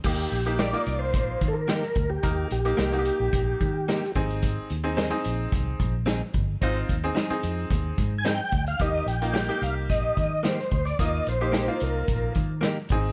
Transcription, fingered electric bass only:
X:1
M:4/4
L:1/16
Q:1/4=110
K:Eb
V:1 name="Fingered electric bass" clef=bass
E,,2 B,,,4 C,,2 B,,,2 E,4 D,,2 | E,,2 B,,,2 C,,3 B,,, B,,,2 E,4 A,,,2- | A,,,2 E,,4 B,,,2 C,,2 B,,,4 G,,,2 | A,,,2 E,,2 z2 F,,2 E,,2 A,,4 D,,2 |
E,,2 B,,,4 C,,2 B,,,2 E,4 D,,2 | E,,2 B,,,4 C,,2 B,,,2 E,4 A,,,2 |]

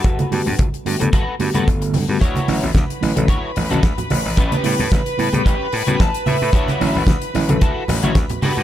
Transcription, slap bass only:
X:1
M:4/4
L:1/16
Q:"Swing 16ths" 1/4=111
K:D
V:1 name="Slap bass" clef=bass
G,,, z G,, G,, G,,, z G,, G,, G,,, z G,, G,, G,,,2 G,, G,, | D,, z A,,, A,,, D,, z A,,, A,,, D,, z A,,, A,,, z2 A,,, A,,, | A,,, z A,, A,, A,,, z A,, A,, A,,, z A,, A,, A,,, z A,, A,, | D,, z A,,, A,,, D,, z A,,, A,,, D,, z A,,, A,,, D,, z G,, G,, |]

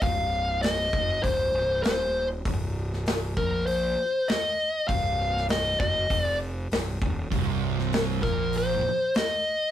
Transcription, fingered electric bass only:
X:1
M:4/4
L:1/8
Q:1/4=99
K:Cm
V:1 name="Fingered electric bass" clef=bass
C,,,3 ^F,,, C,,, C,,, E,,,2 | C,,,3 B,,,2 z3 | C,,,3 ^F,,, =F,,,2 C,,, E,,, | C,,,3 B,,,2 z3 |]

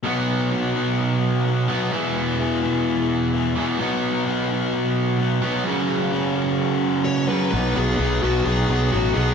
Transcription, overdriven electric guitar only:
X:1
M:4/4
L:1/8
Q:1/4=128
K:B
V:1 name="Overdriven electric guitar" clef=bass
[B,,F,B,]6- [B,,F,B,] [B,,F,B,] | [E,,B,,E,]6- [E,,B,,E,] [E,,B,,E,] | [B,,F,B,]6- [B,,F,B,] [B,,F,B,] | [F,,C,F,]6- [F,,C,F,] [F,,C,F,] |
[B,,F,B,] [B,,F,B,] [B,,F,B,] [B,,F,B,] [B,,F,B,] [B,,F,B,] [B,,F,B,] [B,,F,B,] |]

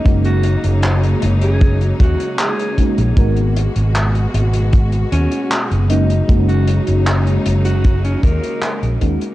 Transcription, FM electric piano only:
X:1
M:4/4
L:1/16
Q:1/4=77
K:F#
V:1 name="FM electric piano"
[G,A,CDF]12- [G,A,CDF]2 [G,A,CDF] z | [G,B,DFA] z12 z [G,A,CDF] z | [G,A,CDF]12- [G,A,CDF]2 [G,A,CDF] z |]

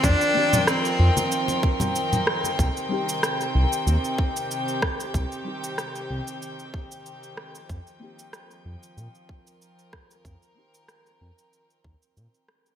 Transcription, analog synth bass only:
X:1
M:4/4
L:1/8
Q:"Swing 16ths" 1/4=94
K:Fdor
V:1 name="Analog synth bass" clef=bass
F,, z2 F,, z4 | C,, z2 C,, E,, z3 | C,, z2 C,, z4 | F,, z2 F,, B,, z3 |
F,, z2 F,, z E,, B,, z |]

